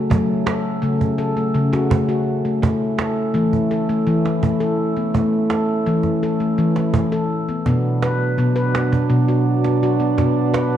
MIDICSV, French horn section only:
0, 0, Header, 1, 2, 480
1, 0, Start_track
1, 0, Key_signature, 2, "minor"
1, 0, Tempo, 720288
1, 69, Time_signature, 7, 3, 24, 8
1, 7177, End_track
2, 0, Start_track
2, 0, Title_t, "French horn section"
2, 0, Program_c, 0, 60
2, 0, Note_on_c, 0, 54, 65
2, 0, Note_on_c, 0, 61, 60
2, 0, Note_on_c, 0, 69, 72
2, 1721, Note_off_c, 0, 54, 0
2, 1723, Note_off_c, 0, 69, 0
2, 1749, Note_on_c, 0, 57, 67
2, 1750, Note_on_c, 0, 64, 82
2, 4989, Note_off_c, 0, 57, 0
2, 4989, Note_off_c, 0, 61, 0
2, 4989, Note_off_c, 0, 64, 0
2, 5102, Note_on_c, 0, 62, 82
2, 5103, Note_on_c, 0, 54, 72
2, 5106, Note_on_c, 0, 59, 68
2, 7177, Note_off_c, 0, 54, 0
2, 7177, Note_off_c, 0, 59, 0
2, 7177, Note_off_c, 0, 62, 0
2, 7177, End_track
0, 0, End_of_file